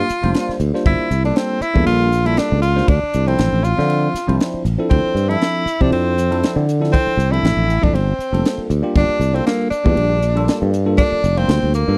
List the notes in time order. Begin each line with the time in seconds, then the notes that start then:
Already playing: F4
0.09 muted fretless electric bass stroke, hi-hat pedal, ride
0.22 F1 G3 A#3 D4 F4 C5, ride
0.34 snare, ride
0.49 muted fretless electric bass stroke, snare
0.60 D2, hi-hat pedal, ride
0.74 G3 A#3 D4 F4 C5, snare
0.86 G1 E4, kick, ride
0.99 muted fretless electric bass stroke
1.11 C2, hi-hat pedal, ride
1.24 G3 A#3 D4 F4 A4, ride
1.36 C4, snare, ride
1.61 E4, muted fretless electric bass stroke, hi-hat pedal, ride
1.74 E2 G3 A#3 D4 F4 A4, kick
1.86 A#1 F4, ride
2.12 hi-hat pedal, ride
2.25 G3 A#3 D4 E4 F4 A4, ride
2.37 D4, snare, ride
2.52 C#2
2.62 F4, hi-hat pedal, ride
2.75 G3 A#3 D4 F4 C5, snare
2.88 D2 D4, kick, ride
3.03 muted fretless electric bass stroke
3.14 C2, hi-hat pedal, ride
3.26 F3 C4 D4 E4 A4, ride
3.39 A1, snare, ride
3.53 A1
3.64 F4, hi-hat pedal, ride
3.77 D3 F3 C4 D4 C5 E5, snare
3.90 ride
4.14 muted fretless electric bass stroke, snare, hi-hat pedal, ride
4.27 C2 F3 C4 D4 E4 C5, ride
4.40 snare, ride
4.54 muted fretless electric bass stroke
4.65 A1, hi-hat pedal, ride
4.78 F3 C4 D4 E4 A4
4.90 D2 C4, kick, ride
5.15 G2, hi-hat pedal, ride
5.28 F3 C4 D4 E4 A4, ride
5.42 snare, ride
5.66 muted fretless electric bass stroke, hi-hat pedal, ride
5.80 C3 F3 C4 D4 E4 C5, kick
5.91 F2 C4, ride
6.18 hi-hat pedal, ride
6.30 F3 C4 D4 E4 A4, ride
6.43 snare, ride
6.56 D3
6.69 hi-hat pedal, ride
6.80 F3 C4 D4 E4 A4, snare
6.93 C4, kick, ride
7.07 muted fretless electric bass stroke
7.17 C2, hi-hat pedal, ride
7.31 F3 C4 D4 E4 A4, ride
7.43 A1, snare, ride
7.57 A1
7.70 hi-hat pedal, ride
7.81 G#1 F3 C4 D4 E4 A4, kick
7.93 G1 C4, ride
8.19 muted fretless electric bass stroke, hi-hat pedal, ride
8.32 F1 G3 A#3 D4 F4 A4, ride
8.45 snare, ride
8.58 muted fretless electric bass stroke
8.70 D2, hi-hat pedal, ride
8.82 G3 A#3 D4 F4 G4
8.95 G1 D4, kick, ride
9.09 muted fretless electric bass stroke
9.20 C2, hi-hat pedal, ride
9.33 G3 A#3 C4 D4 F4 A4, ride
9.46 A#3, snare, ride
9.70 D4, muted fretless electric bass stroke, hi-hat pedal, ride
9.84 E2 G3 A#3 D4 F4 G4, kick
9.96 A#1, ride
10.22 hi-hat pedal, ride
10.35 G3 A#3 D4 F4 A4, ride
10.48 snare, ride
10.62 G2
10.74 hi-hat pedal, ride
10.85 G3 A#3 D4 F4 A4
10.98 D4, kick, ride
11.12 muted fretless electric bass stroke
11.24 F1, hi-hat pedal, ride
11.36 G3 A#3 C4 D4 F4 C5, ride
11.48 D2, snare, ride
11.63 D2
11.74 A#3, hi-hat pedal, ride
11.87 G2 G3 A#3 D4 F4 A4